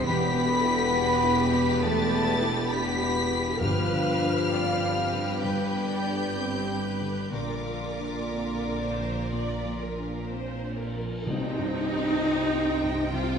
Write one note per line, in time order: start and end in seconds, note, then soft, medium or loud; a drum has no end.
0.00 2.17 G3 medium
0.00 0.91 G4 medium
0.04 3.61 E1 medium
0.04 3.61 E2 loud
0.04 3.65 E2 medium
0.04 1.79 E2 medium
0.04 1.82 B3 loud
0.04 0.47 G4 medium
0.04 3.58 G4 loud
0.04 3.61 B4 loud
0.04 1.79 B5 loud
0.04 1.79 B6 loud
0.33 0.80 B2 medium
0.48 1.36 B3 medium
0.48 0.92 A4 medium
0.63 1.11 E4 medium
0.92 1.22 D4 medium
0.92 2.70 G4 medium
0.92 1.37 B4 medium
1.23 1.71 E4 medium
1.36 2.26 B3 medium
1.36 1.82 G4 medium
1.53 2.01 B2 medium
1.82 3.57 E2 medium
1.82 3.65 B2 medium
1.82 2.54 A3 loud
1.82 2.72 A4 medium
1.82 2.72 A5 loud
1.82 2.72 A6 loud
2.12 2.60 B3 medium
2.41 2.90 E4 medium
2.71 3.59 B3 loud
2.71 3.02 D4 medium
2.71 4.50 G4 medium
2.71 3.59 G4 medium
2.71 3.61 B5 loud
2.71 3.61 B6 loud
3.02 3.49 E4 medium
3.16 4.05 B3 medium
3.31 3.61 B2 medium
3.59 7.29 G1 medium
3.59 7.29 G2 medium
3.59 7.37 G2 medium
3.59 4.92 G2 loud
3.59 5.39 G2 medium
3.59 5.42 F3 loud
3.59 7.29 G4 medium
3.59 4.51 B4 loud
3.59 7.29 B4 medium
3.59 5.38 F5 loud
3.59 5.39 F6 loud
3.92 4.39 D3 medium
4.06 4.95 B3 medium
4.21 4.69 D4 medium
4.51 4.81 C4 soft
4.51 6.37 G4 medium
4.51 4.96 D5 medium
4.81 5.30 D4 medium
4.96 5.89 B3 medium
4.96 5.43 C4 medium
5.12 5.62 D3 medium
5.42 7.30 G2 medium
5.42 7.37 D3 medium
5.42 7.33 G3 medium
5.42 5.90 B4 medium
5.42 7.02 G5 medium
5.42 7.33 G6 loud
5.75 6.25 B3 medium
5.90 6.83 B3 medium
5.90 6.37 D5 medium
6.06 6.56 D4 medium
6.37 6.69 C4 soft
6.37 6.85 C4 medium
6.37 7.37 G4 medium
6.68 7.20 D4 medium
6.85 7.37 B3 medium
6.85 7.32 B4 medium
7.01 7.33 D3 medium
7.32 11.02 A#1 medium
7.32 11.22 A#2 medium
7.32 9.28 A#2 medium
7.32 11.02 A#2 medium
7.32 10.29 D3 medium
7.32 11.05 F4 medium
7.32 11.01 A#4 medium
7.32 8.23 A#4 medium
7.32 10.25 D5 medium
7.32 10.26 D6 medium
7.66 8.19 F3 soft
7.82 8.80 A#3 soft
8.00 8.52 D4 medium
8.32 8.66 C4 soft
8.32 10.29 F4 medium
8.32 8.79 A#4 medium
8.64 9.18 D4 soft
8.82 9.32 C5 medium
8.98 9.52 F3 soft
9.31 11.23 A#2 medium
9.31 11.30 F3 medium
9.31 9.80 D5 medium
9.66 10.17 A#3 soft
9.81 10.78 A#3 medium
9.81 10.30 A#4 medium
9.98 10.49 D4 soft
10.30 10.63 C4 soft
10.30 11.31 F4 medium
10.30 10.79 C5 medium
10.63 11.14 D4 soft
10.79 11.31 A#3 medium
10.79 11.27 A#4 medium
10.96 11.27 F3 medium
11.26 13.39 C2 medium
11.26 13.09 C2 medium
11.26 13.39 C3 medium
11.26 12.63 C3 medium
11.26 13.39 C3 medium
11.26 13.09 D#4 loud
11.26 13.39 C5 medium
11.26 13.09 D#5 loud
11.26 13.39 G5 medium
11.26 tam-tam medium
11.52 13.35 G3 medium
11.59 12.09 G2 medium
11.74 12.89 C5 medium
11.91 12.40 G4 medium
11.98 13.39 G4 medium
12.22 12.52 F4 soft
12.22 12.67 G5 medium
12.45 13.39 C6 medium
12.52 13.01 G4 medium
12.83 13.31 G2 medium
12.91 13.39 C5 medium
13.12 13.39 C2 medium
13.12 13.39 C4 medium
13.12 13.39 F4 loud
13.12 13.39 F5 medium